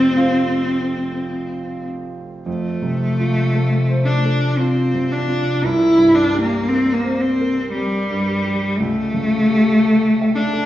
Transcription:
0.00 2.41 F1 medium
0.00 2.39 F2 medium
0.00 2.39 A3 soft
0.00 1.87 C4 medium
0.00 2.40 C4 soft
0.00 0.16 F4 soft
0.00 0.14 G4 medium
0.00 0.14 C5 medium
0.00 0.18 G5 medium
0.16 1.28 F4 medium
0.16 1.28 C5 soft
0.16 1.32 F5 medium
2.46 5.59 F2 medium
2.46 4.07 A3 medium
2.82 3.39 C3 soft
3.20 3.75 F4 soft
3.55 4.10 A4 soft
3.89 4.45 C5 soft
4.05 4.59 D4 medium
4.25 4.81 A4 soft
4.57 5.13 C4 medium
4.57 5.15 F4 soft
4.95 5.50 C3 soft
5.12 5.66 D4 medium
5.29 5.64 F4 soft
5.64 8.75 C2 medium
5.64 6.16 E4 medium
5.98 6.54 G2 soft
6.15 6.41 D4 medium
6.34 6.90 G4 soft
6.41 6.69 A#3 medium
6.68 6.95 C4 medium
6.68 7.25 A#4 soft
6.94 7.22 A#3 medium
7.04 7.60 C5 soft
7.20 7.71 C4 medium
7.41 7.96 A#4 soft
7.72 8.79 G3 medium
7.72 8.31 G4 soft
8.10 8.65 G2 soft
8.44 8.79 G4 soft
8.78 10.66 C#2 soft
8.78 10.37 A3 medium
9.14 9.71 C#3 soft
9.49 10.05 G4 soft
9.85 10.40 A4 soft
10.21 10.66 E5 soft
10.35 10.66 D4 medium
10.53 10.66 A4 soft

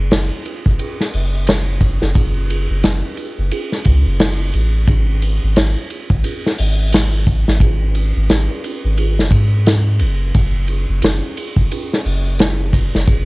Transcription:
0.00 0.10 F#1 medium
0.11 0.30 F#1 medium
0.11 snare loud
0.11 ride medium
0.46 ride medium
0.66 0.78 F#1 medium
0.66 kick medium
0.79 ride medium
1.01 snare soft
1.13 1.99 F#1 medium
1.13 open hi-hat medium
1.47 snare loud
1.47 ride medium
1.81 kick medium
1.81 ride medium
2.02 2.67 F#1 medium
2.02 snare soft
2.15 kick loud
2.15 ride medium
2.50 ride medium
2.70 2.83 F#1 medium
2.83 3.02 F#1 medium
2.83 snare loud
2.83 ride medium
3.17 ride medium
3.38 3.51 F#1 medium
3.51 ride medium
3.72 snare soft
3.85 4.04 C#2 medium
3.85 kick medium
3.85 ride medium
4.06 4.52 F#1 loud
4.20 snare loud
4.20 ride medium
4.54 4.86 A1 loud
4.54 ride medium
4.88 5.39 G#1 medium
4.88 kick loud
4.88 ride medium
5.22 ride medium
5.43 5.56 G#1 medium
5.56 5.75 G#1 medium
5.56 snare loud
5.56 ride medium
5.90 ride medium
6.10 6.23 G#1 loud
6.10 kick medium
6.24 ride medium
6.46 snare soft
6.58 7.44 G#1 medium
6.58 open hi-hat medium
6.92 snare loud
6.92 ride medium
7.27 kick medium
7.27 ride medium
7.48 8.12 G#1 medium
7.48 snare soft
7.60 kick loud
7.60 ride medium
7.95 ride medium
8.16 8.29 G#1 medium
8.30 8.48 G#1 loud
8.30 snare medium
8.30 ride medium
8.64 ride medium
8.84 9.20 G#1 medium
8.97 ride medium
9.18 9.31 F#1 medium
9.18 snare soft
9.31 10.02 G#2 medium
9.31 kick medium
9.31 ride medium
9.66 snare loud
9.66 ride medium
9.99 10.31 F#1 medium
9.99 ride medium
10.35 10.85 F#1 medium
10.35 kick loud
10.35 ride medium
10.68 ride medium
10.89 11.01 F#1 medium
11.02 11.21 F#1 medium
11.02 snare loud
11.02 ride medium
11.37 ride medium
11.56 11.69 F#1 medium
11.56 kick medium
11.71 ride medium
11.93 snare soft
12.05 12.90 F#1 medium
12.05 open hi-hat medium
12.39 snare loud
12.39 ride medium
12.73 kick medium
12.73 ride medium
12.95 13.25 F#1 medium
12.95 snare soft
13.07 kick loud
13.07 ride medium

